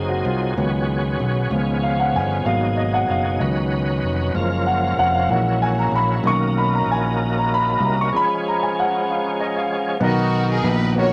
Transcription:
Already playing: F#1 C3 F#3 A#3 C4 D#4 G#4 A#4 C5
0.09 F#4
0.25 C2 F4
0.57 C#2 D#3 F#3 B3 C#4 G#4
1.20 B1
1.51 C#2 D#3 F3 B3 C#4 G#4
1.83 F5
2.00 F#5
2.14 G1 G#5
2.45 G#1 B2 F#3 A#3 B3 D#4 G#4 F5
2.77 D#5
2.94 F#5
3.08 F#1 F5
3.39 C#2 D#3 F#3 B3 C#4 D#4 B4 D#5
4.03 F1
4.34 F#1 F3 G#3 A#3 C#4 F4 A#4
4.67 F#5
4.82 F5
4.97 F1 F#5
5.15 F5
5.28 A#1 E3 F#3 G#3 A#3 C#4 E4 F#5
5.62 G#5
5.79 A#5
5.91 A#1
5.96 B5
6.24 B1 D#3 F#3 A#3 C#4 D#4 G#4 C#6
6.32 A#4
6.58 B5
6.75 A#5
6.86 A#1
6.91 G#5
7.38 A#5
7.54 B5
7.70 B5
7.80 C2
7.85 A#5
8.01 C#6
8.12 F3 G#3 C#4 G#4
8.16 B5
8.48 A#5
8.63 G#5
8.80 F#5
9.10 F5
9.41 D#5
9.57 F5
10.00 B1 D#3 B3 D#4 F#4 A#4
10.04 D#5
10.52 G#4
10.64 A#1 B4
10.95 B3 D#4 F#4 A#4 C#5
10.99 C#5

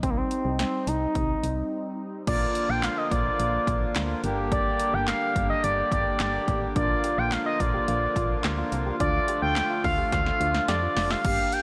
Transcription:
0.03 C2 G3 C4 D#4, kick, closed hi-hat
0.10 A#3
0.17 C4
0.31 closed hi-hat
0.45 C2
0.59 C4, snare, closed hi-hat
0.87 C2 D#4, closed hi-hat
1.15 C2, kick, closed hi-hat
1.43 C2, closed hi-hat
2.27 A#1 D3 F3 A#3 D4 F4 D5, kick, closed hi-hat, crash
2.55 closed hi-hat
2.69 A#1 G5
2.83 F5, snare, clap, closed hi-hat
2.97 D#5
3.11 A#1 D5, kick, closed hi-hat
3.39 A#1, closed hi-hat
3.67 A#1, kick, closed hi-hat
3.95 D2, snare, clap, closed hi-hat
4.24 G1 G3 A#3 D4 G4, closed hi-hat
4.52 D5, kick, closed hi-hat
4.80 closed hi-hat
4.94 G1 G5
5.08 F5, snare, clap, closed hi-hat
5.36 G1, kick, closed hi-hat
5.50 D#5
5.64 G1 D5, closed hi-hat
5.92 G1 D5, kick, closed hi-hat
6.20 G1 D5, snare, clap, closed hi-hat
6.48 A1, kick, closed hi-hat
6.76 A#1 F3 A#3 D4 F4 D5, kick, closed hi-hat
7.04 G4, closed hi-hat
7.18 A#1 G5
7.32 F4 F5, snare, clap, closed hi-hat
7.46 F4 D#5
7.60 A#1 D5, kick, closed hi-hat
7.74 G4
7.88 A#1 F4, closed hi-hat
8.16 A#1 F4, kick, closed hi-hat
8.44 D2 G4, snare, clap, closed hi-hat
8.58 F4
8.72 C2, closed hi-hat
8.86 G4
9.00 D2 D3 A3 D4 F4 D5, kick, closed hi-hat
9.28 G4, closed hi-hat
9.42 D2 G5
9.56 F4, snare, clap, closed hi-hat
9.70 F4
9.84 D2 F5, kick, open hi-hat
9.98 G4
10.12 D2 F4 F5, kick, snare, closed hi-hat
10.26 snare
10.40 D2 F4, closed hi-hat
10.54 snare
10.68 F2 G4 D5, snare, closed hi-hat
10.82 F4
10.97 F1, snare, open hi-hat
11.11 G4 F5, snare
11.25 G1 A#3 D4 G4 F5, kick, closed hi-hat, crash
11.52 G5, closed hi-hat

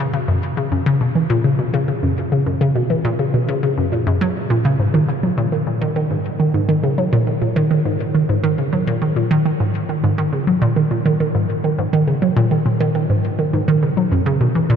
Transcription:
0.14 C#3
0.28 F#2
0.57 C#3
0.72 F#2
0.86 C#3
1.01 B2
1.15 E3
1.30 A#2
1.44 C#3
1.59 B2
1.74 C#3
1.88 C#3
2.03 F#2
2.32 C#3
2.46 F#2
2.61 C#3
2.76 B2
2.90 E3
3.05 A#2
3.19 C#3
3.34 B2
3.48 C#3
3.63 C#3
3.78 F#2
3.92 A#2
4.07 F#2
4.21 F#3
4.50 A#2
4.65 C#3
4.80 G#2
4.94 D#3
5.09 C#3
5.23 F#3
5.38 A#2
5.52 D#3
5.67 A#2
5.81 D#3
5.96 D#3
6.11 G#2
6.40 D#3
6.54 G#2
6.69 D#3
6.83 C#3
6.98 F#3
7.13 A#2
7.27 D#3
7.42 A#2
7.56 D#3
7.71 D#3
7.85 G#2
8.15 D#3
8.29 G#2
8.44 D#3
8.58 C#3
8.73 F#3
8.87 A#2
9.02 D#3
9.16 A#2
9.31 D#3
9.45 D#3
9.60 G#2
9.89 D#3
10.04 G#2
10.18 D#3
10.33 C#3
10.47 F#3
10.62 A#2
10.76 D#3
10.91 A#2
11.06 D#3
11.20 D#3
11.35 G#2
11.64 D#3
11.79 G#2
11.93 D#3
12.08 C#3
12.22 F#3
12.36 A#2
12.51 D#3
12.66 A#2
12.80 D#3
12.95 D#3
13.10 G#2
13.39 D#3
13.53 G#2
13.68 D#3
13.83 C#3
13.97 F#3
14.12 F#2
14.26 C#3
14.41 B2
14.55 E3
14.70 A#2

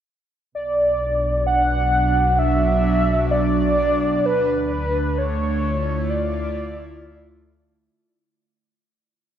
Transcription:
0.52 B1 B2 D5
0.94 D4
1.47 F#3 F#5
2.39 E5
3.31 D5
4.25 D2 D3 B4
4.84 A3
5.18 C#5
5.51 F4
5.66 E4
6.10 D5

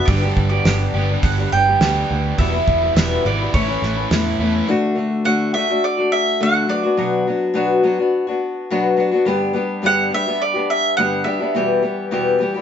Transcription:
0.05 G1 G2 D3 G3 B3 D4 D5, kick, open hi-hat
0.10 G4
0.22 G3 B3 D4 G4
0.37 G1, kick
0.49 B3 D4 G4 D5
0.54 G3
0.64 G1 G2 D3 G3 B3 D4 G4, snare, open hi-hat
0.94 G1 G2 D3 G3 B3 D4 G4
0.98 G4
1.10 G3 B3 D4 G4
1.23 G1 F#5, kick, open hi-hat
1.38 G3 B3 D4 G4
1.52 G1 G3 B3 D4 G4 G5
1.68 G3 B3 D4 G4
1.81 D2 G2 D3 G3 B3 D4 G4, snare, open hi-hat
2.10 D2 G3 B3 D4 G4
2.38 E1 E2 B2 E3 G3 B3 E4 E5, kick, open hi-hat
2.52 E3 G3 B3 E4
2.68 E1, kick
2.82 E3 G3 B3 E4
2.95 E1 E2 B2 E3 G3 B3 E4 E5, snare, open hi-hat
3.25 G#1 E2 B2 E3 G3 B3 E4 D5
3.41 E3 G3 B3 E4
3.54 A1 A2 E3 A3 C#4 E4 C#5, kick, open hi-hat
3.68 A3 C#4 E4
3.81 A1 E3 A3 C#4 E4, snare
3.96 A3 C#4 E4
4.11 E2 A2 E3 A3 C#4 E4, snare, open hi-hat
4.39 E2 A2 E3 A3 C#4 E4
4.67 D3 A3 D4 F#4
4.95 D3 A3 D4 F#4
5.25 D3 A3 D4 F#4 F#5
5.54 D3 A3 D4 F#4 E5
5.69 A3 D4 F#4
5.84 D5
5.97 A3 D4 F#4
6.12 E5
6.40 D3 A3 D4 F#4 F#5
6.67 F#3 B3 D4 F#4 D5
6.83 B3 D4 F#4
6.97 B2 F#3 B3 D4 F#4
7.27 F#3 B3 D4 F#4
7.54 B2 F#3 B3 D4 F#4
7.83 F#3 B3 D4 F#4
7.98 B3 D4 F#4
8.27 B3 D4 F#4
8.70 B2 F#3 B3 D4 F#4
8.97 F#3 B3 D4 F#4
9.11 B3 D4 F#4
9.25 G2 D3 G3 B3 D4 G4
9.53 G3 B3 D4 G4
9.82 G2 D3 G3 B3 D4 G4
9.86 F#5
10.10 G3 B3 D4 G4 E5
10.26 G3 B3 D4 G4
10.42 D5
10.54 G3 B3 D4 G4
10.70 E5
10.97 G2 D3 G3 B3 D4 G4 F#5
11.24 G3 B3 D4 G4 E5
11.39 G3 B3 D4 G4
11.54 E2 B2 E3 G3 B3 G4
11.82 E3 G3 B3 G4
12.11 E2 B2 E3 G3 B3 G4
12.39 E3 G3 B3 G4
12.54 E3 G3 B3 G4

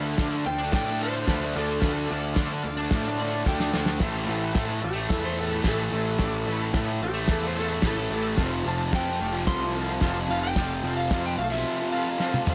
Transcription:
Already playing: D2 D3 A3 D4 A4
0.16 D3 A3 F4 A4, kick, snare, open hi-hat
0.20 D4 D5
0.30 D4
0.35 A3
0.44 D2 F4 A4 C5 G5, muted distorted electric guitar stroke
0.58 D4
0.63 A3
0.72 A2 F4 A4 D5 G5, kick, snare, open hi-hat
0.86 D4
0.91 A3
0.99 D3 A3 F4 A4 C5 E5
1.05 D4
1.13 D4
1.18 A3
1.26 D2 D3 F4 A4 B4, kick, snare, open hi-hat
1.30 A3 D4
1.41 D4
1.46 A3
1.54 D2 D3 A3 F4 A4 D5
1.59 D4
1.80 D2 D3 F4 A4 B4, kick, snare, open hi-hat
1.85 A3 D4
2.06 D3 F4 A4 D5
2.11 D2 A3 D4
2.33 D3 F4 A4 D5, snare, open hi-hat
2.37 A3 D4, kick
2.49 D4
2.54 A3
2.62 D2 F4 A4 D5, muted distorted electric guitar stroke
2.77 D4
2.82 A3
2.91 A2 F4 A4 D5, kick, snare, open hi-hat
3.03 D4
3.09 A3
3.17 D3 A3 F4 A4 D5
3.21 D4 C5
3.30 D4
3.35 A3
3.44 D2 D3 A3 F4 A4 D5 G5, kick, snare
3.49 D4
3.57 D4, snare
3.62 A3
3.72 D2 D3 A3 F4 A4 D5, snare
3.77 D4
3.86 snare
3.98 A1 A2 E3 E4, kick, snare, open hi-hat, crash
4.03 A3 A4 C5
4.25 A1 A2 E3 E4 A4 C5
4.30 A3
4.52 A2 E3 E4 A4, kick, snare, open hi-hat
4.57 A3 C5
4.66 A3
4.71 E3
4.81 A1 E4 G4 A4 D5, muted distorted electric guitar stroke
4.93 A3
4.97 E3
5.09 E2 E4 A4, kick, snare, open hi-hat
5.14 B4
5.20 A3
5.25 E3 C5
5.35 A2 E3 E4
5.39 A3 A4 B4
5.49 A3
5.54 E3
5.62 A1 A2 E3 A4, kick, snare, open hi-hat
5.67 A3 E4 A4 B4
5.76 A3
5.82 E3
5.90 A1 A2 E3 E4
5.94 A3 A4 C5
6.17 A1 A2 E3 E4 A4 D5, kick, snare, open hi-hat
6.23 A3
6.45 A1 A2 E3 E4 A4 B4
6.50 A3
6.72 A2 E3 E4 A4 B4, kick, snare, open hi-hat
6.77 A3
6.86 A3
6.91 E3
7.01 A1 E4 G4 A4 C5, muted distorted electric guitar stroke
7.14 A3
7.19 E3
7.28 E2 E4 A4 D5, kick, snare, open hi-hat
7.41 A3
7.46 E3 C5
7.55 A2 E3 E4 A4 C5
7.60 A3
7.68 A3
7.74 E3
7.82 A1 A2 E3 E4 A4 B4, kick, snare, open hi-hat
7.87 A3
7.96 A3
8.00 E3
8.08 A1 A2 E3 E4 A4 D5
8.14 A3
8.37 F1 F2 C3 F4 A4 C5, kick, snare, open hi-hat
8.41 F3
8.64 F1 F2 C3 F4 A4 A5
8.68 F3 C5
8.91 F2 C3 F4 A4 B4 G5, kick, snare, open hi-hat
8.97 F3
9.05 F3
9.11 C3
9.20 F1 F4 A4 D5, muted distorted electric guitar stroke
9.32 F3
9.37 C3
9.47 C2 F4 A4 B4 C6, kick, snare, open hi-hat
9.60 F3
9.66 C3
9.73 F2 C3 F4 A4 C5
9.78 F3
9.87 F3
9.92 C3
10.01 F1 F2 C3 F4 A4 C5, kick, snare, open hi-hat
10.06 F3
10.14 F3
10.19 C3
10.26 F1 F2 C3 F4
10.30 F3 A4 B4 F5
10.43 G5
10.54 F1 F2 C3 F4 A4, kick, snare, open hi-hat
10.59 F3 D5
10.81 F1 F2 C3
10.86 F3 F4 A4 C5
10.97 F5
11.08 F2 C3 F4, kick, snare, open hi-hat
11.13 F3 A4 C5
11.22 F3
11.26 C3 G5
11.37 B1 F4 A4 C5 F5, muted distorted electric guitar stroke
11.50 F3 E5
11.55 C3
11.67 F4 A4 C5
11.78 F3
11.82 C3
11.91 F2 C3 F4 A4 B4 F5
11.96 F3
12.05 F3
12.10 C3
12.18 F2 C3 F4 A4, snare
12.23 F3 C5
12.32 F3, high tom
12.37 C3
12.45 F2 C3 F4, mid tom
12.50 F3 A4

